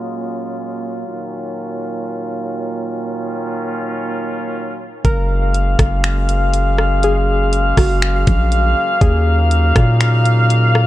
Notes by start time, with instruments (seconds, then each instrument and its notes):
Already playing: brass ensemble A#2 F#3 G#3 C#4 F4
1.08 brass ensemble A#2 D#3 C#4
5.05 808-style bass F#1, brass ensemble C#3 F#3 G#3 A#3 F5, synth pluck A#4, kick, closed hi-hat
5.54 closed hi-hat
5.79 808-style bass F#1, kick, cross-stick, closed hi-hat
6.04 finger snap, closed hi-hat
6.29 closed hi-hat
6.54 closed hi-hat
6.78 cross-stick
7.03 synth pluck G#4, closed hi-hat
7.53 closed hi-hat
7.77 808-style bass F#1, synth pluck F#4, kick, cross-stick, open hi-hat
8.02 finger snap, closed hi-hat
8.27 808-style bass A#1, kick, closed hi-hat
8.52 closed hi-hat
9.01 808-style bass D#2, brass ensemble C#3 D#4, synth pluck G#4, kick, closed hi-hat
9.51 closed hi-hat
9.76 808-style bass A#2, kick, cross-stick, closed hi-hat
10.01 finger snap, closed hi-hat
10.25 closed hi-hat
10.50 closed hi-hat
10.75 cross-stick